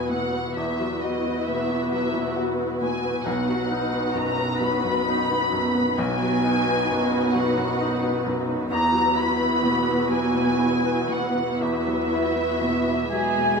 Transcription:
Already playing: grand piano E2 B2 F#3 B3 F#4, cello section E2, viola section B3 E4, violin section F#4 B4 G#5
0.09 grand piano B2, violin section F#5
0.32 grand piano B3
0.56 cello section E2, grand piano E2, viola section B3 E4, violin section F#4 B4 E5
0.80 grand piano F#3
1.01 grand piano F#4, violin section D#5
1.27 grand piano B3
1.46 grand piano B2, violin section E5
1.70 grand piano B3
1.91 grand piano F#3, violin section E5
2.14 grand piano B2
2.37 grand piano F#4
2.59 grand piano B3
2.81 grand piano B2, violin section G#5
3.05 grand piano B3
3.25 grand piano B1, cello section B2, viola section B3 D#4, violin section F#4 B4 F#5
3.48 grand piano F#3
3.71 grand piano D#4
3.94 grand piano B3
4.14 grand piano F#2, violin section A#5
4.38 grand piano B3
4.60 grand piano F#3, violin section B5
4.85 grand piano F#2
5.08 grand piano D#4
5.30 grand piano B3
5.52 grand piano F#2
5.75 grand piano B3
5.98 grand piano B1, cello section B2, viola section B3 D#4, violin section F#4 B4 G#5
6.22 grand piano F#3
6.44 grand piano D#4
6.67 grand piano B3
6.90 grand piano F#2
7.12 grand piano B3
7.35 grand piano F#3, violin section F#5
7.57 grand piano F#2
7.81 grand piano D#4
8.03 grand piano B3
8.26 grand piano F#2
8.49 grand piano B3
8.71 cello section E2, grand piano E2, viola section B3 E4, violin section F#4 B4 A#5
8.93 grand piano F#3
9.16 grand piano E4, violin section B5
9.39 grand piano B3
9.63 grand piano B2
9.86 grand piano B3
10.10 grand piano F#3, violin section G#5
10.34 grand piano B2
10.59 grand piano E4
10.84 grand piano B3
11.09 grand piano B2, violin section F#5
11.35 grand piano B3
11.60 cello section E2, grand piano E2, viola section B3 E4, violin section F#4 B4 E5
11.87 grand piano F#3
12.12 grand piano E4
12.36 grand piano B3
12.61 grand piano B2
12.87 grand piano B3
13.09 grand piano F#3, cello section G#3, violin section G#4 G#5, viola section G#4, oboe G#5
13.38 grand piano B2

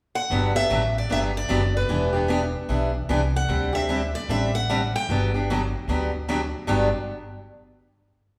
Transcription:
0.15 steel-string acoustic guitar F#5
0.30 upright bass G1, steel-string acoustic guitar D3 F#3 B3 D4 G4
0.55 steel-string acoustic guitar B3 D4 G4 E5
0.70 upright bass A1, steel-string acoustic guitar D3 F#3 B3 D4 G4
0.98 steel-string acoustic guitar D5
1.09 upright bass G1, steel-string acoustic guitar D3 F#3 B3 D4 G4 E5
1.37 steel-string acoustic guitar D5
1.49 upright bass F#1, steel-string acoustic guitar D3 F#3 B3 D4 G4
1.77 steel-string acoustic guitar B4
1.89 upright bass E1, steel-string acoustic guitar E3 B3 D4 G4
2.13 steel-string acoustic guitar B3 D4 G4
2.28 steel-string acoustic guitar E3 B3 D4 G4
2.69 upright bass B1, steel-string acoustic guitar E3 B3 D4 G4
3.09 upright bass C2, steel-string acoustic guitar E3 B3 D4 G4
3.36 steel-string acoustic guitar F#5
3.49 upright bass D2, steel-string acoustic guitar D3 G3 C4 D4 G4
3.73 steel-string acoustic guitar C4 D4 G4 E5
3.89 steel-string acoustic guitar D3 G3 C4 D4 G4
4.15 steel-string acoustic guitar D5
4.29 upright bass A1, steel-string acoustic guitar D3 G3 C4 D4 G4 E5
4.55 steel-string acoustic guitar F#5
4.70 steel-string acoustic guitar D3 G3 C4 D4 G4
4.96 steel-string acoustic guitar G5
5.09 upright bass G1, steel-string acoustic guitar D3 F#3 B3 D4 G4
5.34 steel-string acoustic guitar B3 D4 G4
5.50 steel-string acoustic guitar D3 F#3 B3 D4 G4
5.88 upright bass D2, steel-string acoustic guitar D3 F#3 B3 D4 G4
6.28 steel-string acoustic guitar D3 F#3 B3 D4 G4
6.67 upright bass G1, steel-string acoustic guitar G2 D3 F#3 B3 D4 G4

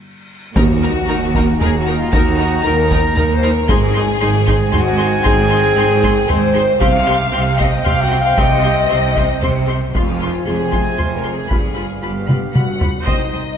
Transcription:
Already playing: reverse cymbal
0.55 double bass section D#2, cello section D#2, trombone section D#3 D#4, timpani D#3, viola section D#4 A#4, french horn section F#4, violin section F#4 A#5, trumpet A#5, taiko, sub drop
0.82 viola section D#4 A#4, violin section A#5
1.08 double bass section D#2, cello section D#2, viola section D#4 A#4, violin section A#5
1.35 viola section D#4 A#4, violin section A#5, taiko
1.59 cello section D#2, double bass section D#2, viola section D#4 A#4, french horn section G#4, violin section G#4 A#5, taiko low
1.78 violin section F#4, french horn section F#4
1.86 viola section D#4 A#4, violin section A#5
1.94 violin section F4, french horn section F4
2.12 cello section D#2, double bass section D#2, viola section D#4 A#4, violin section F#4 A#5, french horn section F#4, taiko
2.38 viola section D#4 A#4, violin section A#5
2.63 cello section D#2, double bass section D#2, viola section D#4 A#4, violin section A#4 A#5, french horn section A#4
2.90 viola section D#4 A#4, violin section A#5, taiko
3.15 cello section D#2, double bass section D#2, viola section D#4 A#4, violin section A#4 A#5, french horn section A#4, taiko low
3.34 violin section C5, french horn section C5
3.43 viola section D#4 A#4, violin section A#5
3.51 violin section A#4, french horn section A#4
3.68 double bass section G#1, cello section G#2, trombone section D#3 C4, viola section D#4 G#4, violin section G#4 C6, french horn section G#4, trumpet G#5, taiko
3.95 viola section D#4 G#4, violin section C6
4.20 double bass section G#1, cello section G#2, viola section D#4 G#4, violin section C6
4.46 viola section D#4 G#4, violin section C6, taiko
4.72 double bass section G#1, cello section G#2, viola section D#4 G#4, french horn section F#4, violin section F#4 C6, taiko low
4.98 viola section D#4 G#4, violin section C6
5.24 double bass section G#1, cello section G#2, viola section D#4 G#4, violin section G#4 C6, french horn section G#4, taiko
5.50 viola section D#4 G#4, violin section C6
5.76 double bass section G#1, cello section G#2, viola section D#4 G#4, violin section C6
6.02 viola section D#4 G#4, violin section C6, taiko
6.28 double bass section G#1, cello section G#2, viola section D#4 G#4, french horn section C5, violin section C5 C6, taiko low
6.54 viola section D#4 G#4, violin section C6
6.80 double bass section C2, trombone section C3 C4, cello section C3, viola section C4 G4, violin section F5 C6, french horn section F5, trumpet G5, taiko
7.07 viola section C4 G4, violin section C6
7.33 double bass section C2, cello section C3, viola section C4 G4, violin section C6
7.57 viola section C4 G4, french horn section D#5, violin section D#5 C6, taiko
7.85 double bass section C2, cello section C3, viola section C4 G4, french horn section F5, violin section F5 C6, taiko low
8.02 french horn section F#4, violin section F#5
8.12 viola section C4 G4, violin section C6
8.20 violin section F5, french horn section F5
8.37 double bass section C2, cello section C3, viola section C4 G4, violin section D#5 C6, french horn section D#5, taiko
8.63 viola section C4 G4, violin section C6
8.89 double bass section C2, cello section C3, viola section C4 G4, violin section C6
9.16 viola section C4 G4, violin section C6, taiko
9.42 double bass section C2, cello section C3, viola section C4 G4, french horn section C5, violin section C5 C6, taiko low
9.67 viola section C4 G4, violin section C6
9.94 double bass section F1, cello section F2, trombone section C3 C4, viola section G#3 F4, french horn section F4, violin section F4 C6, trumpet G#5, taiko
10.20 viola section G#3 F4, violin section C6
10.46 double bass section F1, cello section F2, viola section G#3 F4, french horn section G#4, violin section G#4 C6
10.72 viola section G#3 F4, violin section C6, taiko
10.97 double bass section F1, cello section F2, viola section G#3 F4, french horn section C5, violin section C5 C6, taiko low
11.16 violin section A#4, french horn section A#4
11.24 viola section G#3 F4, violin section C6
11.33 violin section G#4, french horn section G#4
11.48 double bass section G1, cello section G2, trombone section D3 B3, viola section G3 F4, french horn section G#4, violin section G#4 B5, trumpet F5, taiko
11.76 viola section G3 F4, violin section B5
12.02 double bass section G1, cello section G2, viola section G3 F4, violin section G4 B5, french horn section G4
12.27 viola section G3 F4, violin section B5, taiko mid
12.54 double bass section G1, cello section G2, viola section G3 F4, french horn section F#4, violin section F#5 B5, taiko mid
12.79 viola section G3 F4, violin section B5, taiko low
13.06 double bass section C2, cello section C2, timpani C3, french horn section D#4, violin section G4 C5 D#5, viola section C5 D#5, taiko
13.33 double bass section C2, cello section C2, viola section C5 D#5, violin section D#5 G5

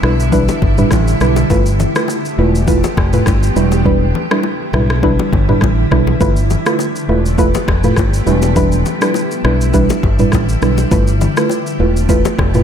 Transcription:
Already playing: ambient pad D3 G3 E4, downlifter
0.03 fingered electric bass B1, synth pluck G3 D4 E4 B4, cross-stick
0.20 shaker
0.32 synth pluck G3 D4 E4 B4, kick, low conga, shaker
0.48 low bongo, shaker
0.62 fingered electric bass G1, kick, low bongo
0.78 synth pluck G3 D4 E4 B4, mid tom, shaker
0.91 fingered electric bass A1, kick, cross-stick, high bongo, shaker
1.08 shaker
1.21 fingered electric bass B1, synth pluck G3 D4 E4 B4, cross-stick, shaker
1.36 low bongo, shaker
1.50 fingered electric bass G1, ambient pad F3 A3 B3 G4, synth pluck A3 E4 F4 B4, kick, low conga, shaker
1.66 shaker
1.80 low bongo, low conga, shaker
1.96 synth pluck A3 E4 F4 B4, cross-stick, shaker
2.08 high bongo, shaker
2.25 shaker
2.38 fingered electric bass E1, synth pluck A3 E4 F4 B4
2.55 shaker
2.67 synth pluck A3 E4 F4 B4, kick, low conga, shaker
2.84 low bongo, shaker
2.97 fingered electric bass F1, kick, cross-stick, low bongo
3.13 synth pluck A3 E4 F4 B4, mid tom, shaker
3.26 fingered electric bass G1, kick, cross-stick, high bongo, shaker
3.43 shaker
3.56 fingered electric bass E1, ambient pad D3 G3 E4, synth pluck G3 D4 E4 B4, shaker
3.72 low bongo, shaker
3.85 synth pluck G3 D4 E4 B4, kick, low conga
4.15 low bongo, low conga
4.31 synth pluck G3 D4 E4 B4, cross-stick
4.43 high bongo
4.73 fingered electric bass B1, synth pluck G3 D4 E4 B4, cross-stick, mid tom
4.90 cross-stick
5.03 synth pluck G3 D4 E4 B4, kick, high bongo, low conga
5.19 low bongo
5.33 fingered electric bass G1, kick, high bongo, low bongo
5.48 synth pluck G3 D4 E4 B4, mid tom
5.61 fingered electric bass A1, kick, cross-stick, high bongo
5.91 fingered electric bass B1, synth pluck G3 D4 E4 B4, kick, cross-stick
6.07 low bongo
6.20 fingered electric bass G1, ambient pad F3 A3 B3 G4, synth pluck A3 E4 F4 B4, kick, low conga, shaker
6.36 shaker
6.50 low bongo, low conga, shaker
6.66 synth pluck A3 E4 F4 B4, cross-stick, shaker
6.79 high bongo, shaker
6.96 shaker
7.09 fingered electric bass E1, synth pluck A3 E4 F4 B4
7.26 shaker
7.38 synth pluck A3 E4 F4 B4, kick, low conga, shaker
7.54 low bongo, shaker
7.68 fingered electric bass F1, kick, cross-stick, low bongo
7.84 synth pluck A3 E4 F4 B4, mid tom, shaker
7.96 fingered electric bass G1, kick, cross-stick, high bongo, shaker
8.14 shaker
8.26 fingered electric bass E1, ambient pad D3 G3 E4, synth pluck G3 D4 E4 B4, shaker
8.42 low bongo, shaker
8.56 synth pluck G3 D4 E4 B4, kick, low conga, shaker
8.72 shaker
8.86 low bongo, low conga, shaker
9.01 synth pluck G3 D4 E4 B4, cross-stick, shaker
9.14 high bongo, shaker
9.31 shaker
9.44 fingered electric bass B1, synth pluck G3 D4 E4 B4, cross-stick
9.61 shaker
9.73 synth pluck G3 D4 E4 B4, kick, low conga, shaker
9.90 low bongo, shaker
10.03 fingered electric bass G1, kick, low bongo
10.19 synth pluck G3 D4 E4 B4, mid tom, shaker
10.32 fingered electric bass A1, kick, cross-stick, high bongo, shaker
10.49 shaker
10.62 fingered electric bass B1, synth pluck G3 D4 E4 B4, cross-stick, shaker
10.78 low bongo, shaker
10.91 fingered electric bass G1, ambient pad F3 A3 B3 G4, synth pluck A3 E4 F4 B4, kick, low conga, shaker
11.07 shaker
11.21 low bongo, low conga, shaker
11.37 synth pluck A3 E4 F4 B4, cross-stick, shaker
11.49 high bongo, shaker
11.67 shaker
11.79 fingered electric bass E1, synth pluck A3 E4 F4 B4
11.96 shaker
12.09 synth pluck A3 E4 F4 B4, kick, low conga, shaker
12.25 low bongo, shaker
12.39 fingered electric bass F1, kick, cross-stick, low bongo
12.54 synth pluck A3 E4 F4 B4, mid tom, shaker

